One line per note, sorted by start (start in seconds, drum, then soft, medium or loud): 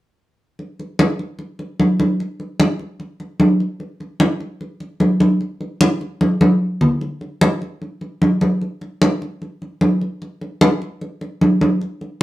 0.59 high conga soft
0.79 high conga soft
0.99 high conga medium
1.19 high conga soft
1.39 high conga soft
1.59 high conga soft
1.80 high conga medium
2.00 high conga medium
2.20 high conga soft
2.40 high conga soft
2.60 high conga medium
2.79 high conga soft
3.00 high conga soft
3.20 high conga soft
3.40 high conga medium
3.60 high conga soft
3.80 high conga soft
4.00 high conga soft
4.20 high conga medium
4.40 high conga soft
4.61 high conga soft
4.80 high conga soft
5.00 high conga medium
5.20 high conga medium
5.41 high conga soft
5.61 high conga soft
5.81 high conga medium
6.01 high conga soft
6.21 high conga medium
6.41 high conga loud
6.81 low conga medium
7.01 high conga soft
7.21 high conga soft
7.41 high conga medium
7.62 high conga soft
7.82 high conga soft
8.01 high conga soft
8.22 high conga medium
8.41 high conga medium
8.61 high conga soft
8.81 high conga soft
9.02 high conga medium
9.22 high conga soft
9.42 high conga soft
9.62 high conga soft
9.81 high conga medium
10.01 high conga soft
10.22 high conga soft
10.41 high conga soft
10.61 high conga medium
10.82 high conga soft
11.01 high conga soft
11.21 high conga soft
11.41 high conga medium
11.61 high conga medium
11.81 high conga soft
12.01 high conga soft